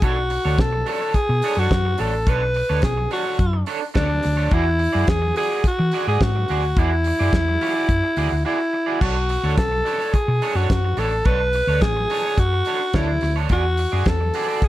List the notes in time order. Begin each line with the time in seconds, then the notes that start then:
0.02 B1 D4 F#4 A4 C#5, kick, closed hi-hat
0.17 muted clean electric guitar stroke
0.30 muted clean electric guitar stroke, open hi-hat
0.45 D2 D4 A4 C#5
0.58 B1 A4, muted clean electric guitar stroke, kick, snare, closed hi-hat
0.72 muted clean electric guitar stroke
0.86 D4 A4 C#5, open hi-hat
1.00 D4 A4 C#5
1.14 G#4, muted fingered electric bass stroke, muted clean electric guitar stroke, kick, closed hi-hat
1.29 B2, muted clean electric guitar stroke
1.42 D4 A4 C#5, open hi-hat
1.56 F#2 D4 F#4 A4 C#5
1.71 F#2, kick, snare, closed hi-hat
1.85 muted clean electric guitar stroke
1.98 A1 D4 A4 C#5, open hi-hat
2.14 muted clean electric guitar stroke
2.27 B1 D4 A4 B4 C#5, kick, closed hi-hat
2.42 muted clean electric guitar stroke
2.54 muted clean electric guitar stroke, open hi-hat
2.69 D2 D4 A4 C#5
2.82 B1 G#4, muted clean electric guitar stroke, kick, snare, closed hi-hat
2.97 muted clean electric guitar stroke
3.11 D4 F#4 A4 C#5, open hi-hat
3.24 D4 A4 C#5
3.39 F#2, kick, closed hi-hat
3.53 muted clean electric guitar stroke
3.66 D4 A4 C#5, open hi-hat
3.81 muted clean electric guitar stroke
3.94 D2 D4 A4 C#5, kick, snare, closed hi-hat
4.09 muted clean electric guitar stroke
4.23 D2, muted clean electric guitar stroke, snare, open hi-hat
4.37 D4 A4 C#5
4.51 E2 E4 F#4 G#4 D5, kick, closed hi-hat
4.65 muted clean electric guitar stroke
4.79 muted clean electric guitar stroke, open hi-hat
4.92 F#2 F#4 G#4 D5
5.07 E2 G#4, muted clean electric guitar stroke, kick, snare, closed hi-hat
5.22 muted clean electric guitar stroke
5.36 F#4 G#4 D5, open hi-hat
5.51 F#4 G#4 D5
5.64 F#4, muted fingered electric bass stroke, muted clean electric guitar stroke, kick, closed hi-hat
5.79 E3, muted clean electric guitar stroke
5.92 F#4 G#4 D5, open hi-hat
6.07 G#2 F#4 G#4 D5
6.21 G#2 F#4, kick, snare, closed hi-hat
6.36 muted clean electric guitar stroke
6.48 D2 F#4 G#4 D5, open hi-hat
6.64 muted clean electric guitar stroke
6.76 E2 E4 F#4 G#4 D5, kick, closed hi-hat
6.92 muted clean electric guitar stroke
7.04 muted clean electric guitar stroke, open hi-hat
7.19 F#2 F#4 G#4 D5
7.33 E2, muted clean electric guitar stroke, kick, snare, closed hi-hat
7.48 muted clean electric guitar stroke
7.61 F#4 G#4 D5, open hi-hat
7.74 F#4 G#4 D5
7.89 F#2, kick, closed hi-hat
8.03 muted clean electric guitar stroke
8.16 D2 F#4 G#4 D5, open hi-hat
8.31 D2, muted clean electric guitar stroke
8.45 E4 F#4 G#4 D5
8.58 muted clean electric guitar stroke
8.73 muted clean electric guitar stroke
8.86 F#4 G#4 D5
9.01 B1 D4 F#4 A4 C#5, kick, crash
9.16 muted clean electric guitar stroke
9.29 muted clean electric guitar stroke, open hi-hat
9.43 D2 D4 A4 C#5
9.57 B1 A4, muted clean electric guitar stroke, kick, snare, closed hi-hat
9.72 muted clean electric guitar stroke
9.85 D4 A4 C#5, open hi-hat
10.00 D4 A4 C#5
10.14 G#4, muted clean electric guitar stroke, muted fingered electric bass stroke, kick, closed hi-hat
10.28 B2, muted clean electric guitar stroke
10.42 D4 A4 C#5, open hi-hat
10.55 F#2 D4 F#4 A4 C#5
10.70 kick, snare, closed hi-hat
10.85 muted clean electric guitar stroke
10.97 A1 D4 A4 C#5, snare, open hi-hat
11.12 muted clean electric guitar stroke
11.25 B1 D4 A4 B4 C#5, kick, closed hi-hat
11.40 muted clean electric guitar stroke
11.53 muted clean electric guitar stroke, open hi-hat
11.67 D2 D4 A4 C#5
11.81 A1 G#4, muted clean electric guitar stroke, kick, snare, closed hi-hat
11.96 muted clean electric guitar stroke
12.10 D4 A4 C#5, open hi-hat
12.24 D4 A4 C#5
12.38 F#2 F#4, kick, closed hi-hat
12.53 muted clean electric guitar stroke
12.65 D4 A4 C#5, open hi-hat
12.80 muted clean electric guitar stroke
12.93 D2 D4 E4 A4 C#5, kick, snare, closed hi-hat
13.08 muted clean electric guitar stroke
13.21 D2, muted clean electric guitar stroke, snare, open hi-hat
13.36 D4 A4 C#5
13.49 E2 F#4 G#4 D5, kick, closed hi-hat
13.64 muted clean electric guitar stroke
13.77 muted clean electric guitar stroke, open hi-hat
13.92 F#2 F#4 G#4 D5
14.06 E2 A4, muted clean electric guitar stroke, kick, snare, closed hi-hat
14.21 muted clean electric guitar stroke
14.34 F#4 G#4 D5, open hi-hat
14.48 F#4 G#4 D5
14.62 muted fingered electric bass stroke, muted clean electric guitar stroke, kick, closed hi-hat